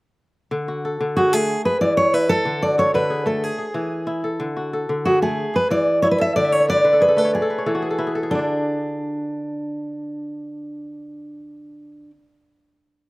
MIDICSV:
0, 0, Header, 1, 3, 480
1, 0, Start_track
1, 0, Tempo, 325380
1, 757, Time_signature, 12, 3, 24, 8
1, 19322, End_track
2, 0, Start_track
2, 0, Title_t, "Steel-string acoustic guitar"
2, 0, Program_c, 0, 25
2, 1719, Note_on_c, 0, 66, 79
2, 1960, Note_off_c, 0, 66, 0
2, 1960, Note_on_c, 0, 68, 69
2, 2433, Note_off_c, 0, 68, 0
2, 2439, Note_on_c, 0, 71, 77
2, 2663, Note_off_c, 0, 71, 0
2, 2669, Note_on_c, 0, 74, 89
2, 2903, Note_off_c, 0, 74, 0
2, 2909, Note_on_c, 0, 73, 86
2, 3151, Note_off_c, 0, 73, 0
2, 3151, Note_on_c, 0, 71, 72
2, 3383, Note_on_c, 0, 69, 86
2, 3395, Note_off_c, 0, 71, 0
2, 3872, Note_on_c, 0, 74, 80
2, 3877, Note_off_c, 0, 69, 0
2, 4108, Note_off_c, 0, 74, 0
2, 4114, Note_on_c, 0, 73, 85
2, 4342, Note_off_c, 0, 73, 0
2, 4348, Note_on_c, 0, 71, 72
2, 4791, Note_off_c, 0, 71, 0
2, 4818, Note_on_c, 0, 69, 63
2, 5068, Note_off_c, 0, 69, 0
2, 5068, Note_on_c, 0, 68, 67
2, 6263, Note_off_c, 0, 68, 0
2, 7456, Note_on_c, 0, 66, 74
2, 7701, Note_off_c, 0, 66, 0
2, 7707, Note_on_c, 0, 68, 67
2, 8197, Note_off_c, 0, 68, 0
2, 8197, Note_on_c, 0, 71, 75
2, 8420, Note_off_c, 0, 71, 0
2, 8426, Note_on_c, 0, 74, 84
2, 8870, Note_off_c, 0, 74, 0
2, 8886, Note_on_c, 0, 73, 82
2, 9013, Note_off_c, 0, 73, 0
2, 9019, Note_on_c, 0, 71, 78
2, 9143, Note_off_c, 0, 71, 0
2, 9167, Note_on_c, 0, 76, 90
2, 9374, Note_off_c, 0, 76, 0
2, 9380, Note_on_c, 0, 74, 90
2, 9623, Note_off_c, 0, 74, 0
2, 9623, Note_on_c, 0, 73, 78
2, 9863, Note_off_c, 0, 73, 0
2, 9878, Note_on_c, 0, 74, 90
2, 10318, Note_off_c, 0, 74, 0
2, 10350, Note_on_c, 0, 71, 77
2, 10591, Note_off_c, 0, 71, 0
2, 10591, Note_on_c, 0, 69, 65
2, 10833, Note_off_c, 0, 69, 0
2, 10839, Note_on_c, 0, 68, 65
2, 11976, Note_off_c, 0, 68, 0
2, 12257, Note_on_c, 0, 62, 70
2, 17852, Note_off_c, 0, 62, 0
2, 19322, End_track
3, 0, Start_track
3, 0, Title_t, "Kora"
3, 0, Program_c, 1, 46
3, 754, Note_on_c, 1, 50, 72
3, 1005, Note_on_c, 1, 66, 50
3, 1251, Note_on_c, 1, 69, 55
3, 1465, Note_off_c, 1, 50, 0
3, 1483, Note_on_c, 1, 50, 73
3, 1719, Note_on_c, 1, 68, 58
3, 1969, Note_on_c, 1, 57, 63
3, 2265, Note_off_c, 1, 50, 0
3, 2428, Note_off_c, 1, 68, 0
3, 2434, Note_on_c, 1, 68, 52
3, 2522, Note_off_c, 1, 57, 0
3, 2522, Note_off_c, 1, 69, 0
3, 2674, Note_on_c, 1, 52, 67
3, 3151, Note_on_c, 1, 64, 70
3, 3161, Note_off_c, 1, 66, 0
3, 3394, Note_on_c, 1, 69, 60
3, 3482, Note_off_c, 1, 68, 0
3, 3617, Note_on_c, 1, 50, 77
3, 3699, Note_off_c, 1, 52, 0
3, 3865, Note_on_c, 1, 66, 57
3, 4093, Note_off_c, 1, 69, 0
3, 4099, Note_on_c, 1, 69, 59
3, 4322, Note_off_c, 1, 50, 0
3, 4340, Note_on_c, 1, 50, 74
3, 4576, Note_on_c, 1, 68, 60
3, 4805, Note_on_c, 1, 57, 68
3, 5135, Note_off_c, 1, 50, 0
3, 5281, Note_off_c, 1, 68, 0
3, 5287, Note_on_c, 1, 68, 53
3, 5376, Note_off_c, 1, 57, 0
3, 5376, Note_off_c, 1, 69, 0
3, 5462, Note_off_c, 1, 64, 0
3, 5522, Note_on_c, 1, 52, 70
3, 6000, Note_on_c, 1, 64, 72
3, 6022, Note_off_c, 1, 66, 0
3, 6253, Note_on_c, 1, 69, 63
3, 6341, Note_off_c, 1, 68, 0
3, 6485, Note_on_c, 1, 50, 73
3, 6573, Note_off_c, 1, 52, 0
3, 6734, Note_on_c, 1, 66, 53
3, 6976, Note_off_c, 1, 69, 0
3, 6982, Note_on_c, 1, 69, 62
3, 7198, Note_off_c, 1, 50, 0
3, 7216, Note_on_c, 1, 50, 70
3, 7466, Note_on_c, 1, 68, 60
3, 7701, Note_on_c, 1, 57, 71
3, 8013, Note_off_c, 1, 50, 0
3, 8162, Note_off_c, 1, 68, 0
3, 8168, Note_on_c, 1, 68, 55
3, 8256, Note_off_c, 1, 57, 0
3, 8256, Note_off_c, 1, 69, 0
3, 8312, Note_off_c, 1, 64, 0
3, 8415, Note_on_c, 1, 52, 76
3, 8891, Note_off_c, 1, 66, 0
3, 8904, Note_on_c, 1, 64, 63
3, 9136, Note_on_c, 1, 69, 63
3, 9224, Note_off_c, 1, 68, 0
3, 9383, Note_on_c, 1, 50, 73
3, 9454, Note_off_c, 1, 52, 0
3, 9509, Note_on_c, 1, 76, 65
3, 9618, Note_on_c, 1, 74, 60
3, 9739, Note_on_c, 1, 73, 66
3, 9861, Note_on_c, 1, 71, 66
3, 9976, Note_off_c, 1, 73, 0
3, 9982, Note_on_c, 1, 73, 61
3, 10071, Note_off_c, 1, 74, 0
3, 10078, Note_off_c, 1, 50, 0
3, 10092, Note_off_c, 1, 71, 0
3, 10095, Note_on_c, 1, 50, 68
3, 10098, Note_on_c, 1, 71, 65
3, 10215, Note_off_c, 1, 69, 0
3, 10221, Note_on_c, 1, 69, 61
3, 10335, Note_on_c, 1, 68, 63
3, 10445, Note_off_c, 1, 69, 0
3, 10451, Note_on_c, 1, 69, 63
3, 10568, Note_off_c, 1, 71, 0
3, 10570, Note_on_c, 1, 57, 67
3, 10574, Note_on_c, 1, 71, 59
3, 10659, Note_off_c, 1, 68, 0
3, 10686, Note_off_c, 1, 73, 0
3, 10692, Note_on_c, 1, 73, 66
3, 10818, Note_on_c, 1, 74, 57
3, 10898, Note_off_c, 1, 50, 0
3, 10939, Note_off_c, 1, 69, 0
3, 10945, Note_on_c, 1, 69, 63
3, 11034, Note_off_c, 1, 76, 0
3, 11059, Note_off_c, 1, 71, 0
3, 11065, Note_on_c, 1, 71, 57
3, 11181, Note_off_c, 1, 73, 0
3, 11186, Note_on_c, 1, 73, 57
3, 11216, Note_off_c, 1, 64, 0
3, 11275, Note_off_c, 1, 74, 0
3, 11299, Note_off_c, 1, 69, 0
3, 11305, Note_on_c, 1, 52, 71
3, 11305, Note_on_c, 1, 69, 65
3, 11429, Note_on_c, 1, 66, 61
3, 11540, Note_on_c, 1, 68, 58
3, 11628, Note_off_c, 1, 57, 0
3, 11628, Note_off_c, 1, 69, 0
3, 11662, Note_on_c, 1, 69, 66
3, 11775, Note_off_c, 1, 71, 0
3, 11779, Note_on_c, 1, 64, 68
3, 11781, Note_on_c, 1, 71, 61
3, 11896, Note_off_c, 1, 68, 0
3, 11901, Note_on_c, 1, 68, 58
3, 11990, Note_off_c, 1, 69, 0
3, 12025, Note_on_c, 1, 69, 69
3, 12136, Note_off_c, 1, 68, 0
3, 12142, Note_on_c, 1, 68, 59
3, 12256, Note_on_c, 1, 50, 63
3, 12319, Note_on_c, 1, 62, 62
3, 12343, Note_off_c, 1, 52, 0
3, 12344, Note_off_c, 1, 73, 0
3, 12377, Note_on_c, 1, 74, 60
3, 13586, Note_off_c, 1, 66, 0
3, 13594, Note_off_c, 1, 71, 0
3, 13969, Note_off_c, 1, 69, 0
3, 14091, Note_off_c, 1, 64, 0
3, 14154, Note_off_c, 1, 68, 0
3, 17909, Note_off_c, 1, 50, 0
3, 17973, Note_off_c, 1, 62, 0
3, 18031, Note_off_c, 1, 74, 0
3, 19322, End_track
0, 0, End_of_file